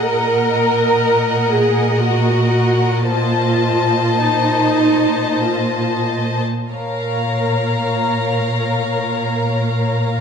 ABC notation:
X:1
M:3/4
L:1/8
Q:1/4=52
K:Bbm
V:1 name="Violin section"
g6 | =a6 | b6 |]
V:2 name="Violin section"
[Be]6 | [ce]6 | [df]6 |]
V:3 name="Viola section"
B3 A G2 | F2 E2 F z | B6 |]
V:4 name="Cello section" clef=bass
B,,6- | B,,6 | B,,6 |]